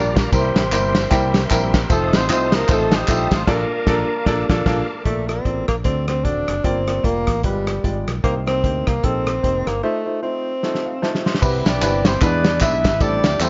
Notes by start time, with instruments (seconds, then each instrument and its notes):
Already playing: fingered electric bass A#1, grand piano G3 A#3 D4 F4 A#4, horn section D4 F4 A#4 D5, tonewheel organ G4 D5 F5 A#5
0.16 horn section A#3 A#4, kick, snare, ride, tambourine
0.32 fingered electric bass C2, grand piano C3 G3 A#3 C4 E4 A#4, horn section C4 E4 G4 C5, tonewheel organ A#4 E5 G5 C6, kick, ride, tambourine
0.55 fingered electric bass A1, snare, ride, tambourine
0.72 fingered electric bass G1, grand piano G3 A#3 C4 E4 A#4, clap, ride, tambourine
0.95 snare, ride, tambourine
1.10 fingered electric bass C2, grand piano G3 A#3 C4 E4 G4, kick, clap, ride, tambourine
1.34 snare, ride, tambourine
1.50 fingered electric bass A#1, grand piano G3 A#3 C4 E4 A#4, kick, clap, ride, tambourine
1.74 kick, snare, ride, tambourine
1.89 fingered electric bass F1, grand piano A3 C4 D#4 F4 C5, horn section A3 C4 D#4 A4, tonewheel organ C5 F5 A5 D#6, kick, ride, tambourine
2.13 fingered electric bass A1, horn section C4 C5, snare, ride, tambourine
2.29 fingered electric bass C2, grand piano A3 C4 D#4 F4 D#5, horn section C4 C5, clap, ride, tambourine
2.52 horn section A#3 A#4, snare, ride, tambourine
2.68 fingered electric bass A1, grand piano A3 C4 D#4 F4 C5, horn section A3 C4 D#4 A4, kick, clap, ride, tambourine
2.91 horn section G3 C4 D#4 G4, snare, ride, tambourine
3.08 fingered electric bass A#1, grand piano A3 C4 D#4 F4 A4, kick, clap, ride, tambourine
3.31 fingered electric bass A1, horn section F3 F4, kick, snare, ride, tambourine
3.46 fingered electric bass A#1, grand piano A#2 A#3 D4 F4 A4 D5, horn section A#3 D4 F4 A#4, tonewheel organ A#4 D6, kick, snare, crash
3.87 fingered electric bass A#1, grand piano A#3 D4 F4 A4 D5, kick, snare
4.26 fingered electric bass A#1, grand piano A#3 D4 F4 A4 D5, kick, snare
4.50 fingered electric bass A#1, grand piano A#3 D4 F4 A4 D5, kick, snare
4.66 fingered electric bass A#1, grand piano A#3 D4 F4 A4 F5, kick, snare, crash
5.05 fingered electric bass A#1, grand piano A#2 A#3 F4 A4 D5, tenor saxophone A3, kick, closed hi-hat
5.28 grand piano A#3 F4 A4 D5, tenor saxophone C4, cross-stick, closed hi-hat
5.45 fingered electric bass A1, grand piano A#3 F4 A4 D5, kick, closed hi-hat
5.68 fingered electric bass A#1, tenor saxophone A#3, kick, cross-stick, closed hi-hat
5.84 fingered electric bass D2, grand piano D3 C4 F#4 A4 D5, tenor saxophone C4, kick, closed hi-hat
6.08 tenor saxophone C4, cross-stick, closed hi-hat
6.25 fingered electric bass D#1, grand piano C4 F#4 A4 D5, tenor saxophone D4, kick, closed hi-hat
6.48 fingered electric bass F#1, cross-stick, closed hi-hat
6.64 fingered electric bass G1, grand piano G2 A#3 F4 G4 D5, tenor saxophone C4, kick, closed hi-hat
6.87 grand piano A#3 F4 G4 D5, cross-stick, closed hi-hat
7.04 fingered electric bass F1, grand piano A#3 F4 G4 D5, tenor saxophone A#3, kick, closed hi-hat
7.27 fingered electric bass A1, kick, cross-stick, closed hi-hat
7.43 fingered electric bass G1, grand piano G2 G#3 F4 G4 B4, tenor saxophone G3, kick, closed hi-hat
7.67 cross-stick, closed hi-hat
7.84 fingered electric bass G#1, grand piano G#3 F4 G4 D5, kick, closed hi-hat
8.07 fingered electric bass B1, cross-stick, closed hi-hat
8.24 fingered electric bass C2, grand piano C3 A#3 D#4 G4 C5, tenor saxophone A#3, kick, closed hi-hat
8.47 grand piano A#3 D#4 G4 C5, tenor saxophone C4, cross-stick, closed hi-hat
8.64 fingered electric bass D2, grand piano A#3 D#4 G4 C5, kick, closed hi-hat
8.87 fingered electric bass C2, tenor saxophone A#3, kick, cross-stick, closed hi-hat
9.03 fingered electric bass A#1, grand piano A#3 D#4 G4 A4, tenor saxophone C4, kick, closed hi-hat
9.27 cross-stick, closed hi-hat
9.43 fingered electric bass F1, grand piano A#3 D#4 G4 C5, kick, closed hi-hat
9.67 fingered electric bass G1, tenor saxophone A#3, cross-stick, closed hi-hat
9.83 grand piano A3 D#4 F4 C5, tenor saxophone A3
10.06 grand piano A3 D#4 F4 C5
10.22 grand piano A3 D#4 F4 C5, tenor saxophone C4
10.63 grand piano A3 D#4 F4 A4, snare
10.75 snare
10.86 grand piano F5
11.02 grand piano A3 D#4 F4 C5 A5, snare
11.15 snare
11.26 grand piano C6, snare
11.35 snare
11.42 fingered electric bass C2, grand piano C3 G3 B3 C4 E4 B4, horn section B3 E4 G4 B4, kick, crash, tambourine
11.65 fingered electric bass B1, horn section D4 G4 B4 D5, snare, ride, tambourine
11.82 fingered electric bass G1, grand piano G3 B3 C4 E4 B4, clap, ride, tambourine
12.05 horn section C4 C5, snare, ride, tambourine
12.21 fingered electric bass E2, grand piano E3 G#3 B3 D4 E4 B4, horn section D4 G#4 B4 D5, kick, clap, ride, tambourine
12.44 snare, ride, tambourine
12.60 fingered electric bass B1, grand piano G#3 B3 D4 E4 D5, horn section E4 G#4 B4 E5, kick, clap, ride, tambourine
12.84 fingered electric bass G#1, kick, snare, ride, tambourine
13.00 fingered electric bass A1, grand piano A2 G3 A3 C4 E4 A4, horn section D4 G4 D5, kick, ride, tambourine
13.24 fingered electric bass D2, snare, ride, tambourine
13.40 fingered electric bass E2, grand piano G3 A3 C4 E4 A4, horn section C4 C5, clap, ride, tambourine